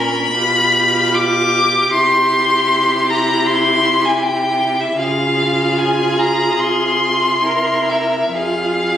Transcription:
0.00 0.35 A#2 medium
0.00 0.33 C#4 medium
0.00 0.32 A#4 medium
0.00 1.16 B5 medium
0.36 1.89 B2 medium
0.36 1.89 F4 medium
0.36 4.96 G4 medium
1.15 1.92 D6 loud
1.92 4.96 C3 medium
1.92 4.96 E4 medium
1.92 3.11 C6 medium
3.10 3.48 A#5 medium
3.46 4.06 C6 medium
4.05 4.24 G#5 medium
4.23 4.82 G5 medium
4.80 4.98 E5 medium
4.99 6.57 C#3 medium
4.99 7.41 F4 medium
4.99 7.40 G#4 medium
4.99 5.80 F5 medium
5.79 6.20 G#5 medium
6.19 6.61 A#5 medium
6.60 8.32 C3 medium
6.60 7.91 C6 medium
7.45 8.31 E4 soft
7.45 8.32 A#4 soft
7.89 8.37 E5 medium
8.35 8.97 F2 soft
8.35 8.97 F4 soft
8.35 8.97 G#4 soft
8.35 8.97 F5 medium

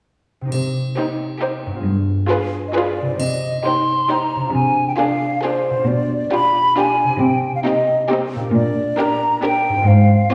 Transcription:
0.41 1.87 C3 soft
0.41 1.85 C4 soft
0.41 1.83 D#4 soft
0.47 3.14 G4 soft
0.52 0.88 C3 soft
0.52 triangle soft
0.96 1.30 D#4 soft
0.96 1.29 G4 soft
0.96 1.30 C5 soft
1.41 1.74 D#4 soft
1.41 1.74 G4 soft
1.41 1.75 C5 soft
1.66 3.13 G2 soft
1.71 3.15 B3 soft
1.75 3.17 F4 soft
1.80 3.20 G#4 soft
1.85 2.20 G2 soft
2.29 2.63 F4 soft
2.29 2.63 G#4 soft
2.29 2.64 B4 soft
2.68 2.74 D#5 soft
2.75 3.09 F4 soft
2.75 3.09 G#4 soft
2.75 3.09 B4 medium
2.75 3.21 D5 soft
3.01 4.35 C3 soft
3.06 5.83 C4 soft
3.11 4.51 D#4 soft
3.15 4.54 G4 soft
3.15 3.63 D#5 soft
3.20 3.56 C3 soft
3.20 triangle soft
3.64 3.99 D#4 soft
3.64 3.99 G4 soft
3.64 3.99 C5 soft
3.64 4.12 C6 medium
4.10 4.43 D#4 soft
4.10 4.43 G4 soft
4.10 4.43 C5 soft
4.10 4.54 A#5 soft
4.36 5.81 C3 soft
4.40 5.74 D4 soft
4.45 5.78 F4 soft
4.49 5.87 G#4 soft
4.54 4.90 C3 soft
4.54 4.87 G#5 soft
4.88 4.93 G5 soft
4.97 5.32 D4 soft
4.97 5.32 F4 soft
4.97 5.32 G#4 soft
4.97 5.42 F5 medium
5.42 5.77 D4 soft
5.42 5.76 F4 soft
5.42 5.76 G#4 soft
5.42 5.89 C5 soft
5.70 7.14 B2 soft
5.75 7.17 D4 soft
5.79 7.19 F4 soft
5.84 6.23 B2 soft
5.84 7.15 G4 soft
5.84 6.32 D5 soft
6.32 6.66 D4 soft
6.32 6.65 F4 soft
6.32 6.66 G4 soft
6.32 6.76 B5 medium
6.76 7.11 D4 soft
6.76 7.09 F4 soft
6.76 7.10 G4 soft
6.76 7.22 G#5 medium
7.04 8.47 C3 soft
7.08 8.49 C4 soft
7.12 8.52 D#4 soft
7.17 7.56 C3 medium
7.17 8.43 G4 soft
7.17 7.54 G5 soft
7.55 7.60 F5 soft
7.65 7.99 C4 soft
7.65 7.98 D#4 soft
7.65 7.99 G4 soft
7.65 8.09 D#5 soft
8.09 8.43 C4 soft
8.09 8.44 D#4 soft
8.09 8.42 G4 soft
8.36 9.80 A#2 soft
8.41 9.82 D4 soft
8.45 9.84 G4 soft
8.49 8.89 A#2 medium
8.49 9.86 A#4 soft
8.55 9.02 D5 medium
8.98 9.31 D4 soft
8.98 9.31 G4 soft
8.98 9.31 A#4 soft
8.98 9.43 A#5 medium
9.43 9.76 D4 soft
9.43 9.76 G4 soft
9.43 9.76 A#4 medium
9.43 9.89 G5 medium
9.69 10.34 G#2 soft
9.73 10.34 C4 soft
9.78 10.34 F4 soft
9.82 10.22 G#2 medium
9.82 10.34 C5 soft
9.87 10.31 F5 medium
10.31 10.34 F4 soft

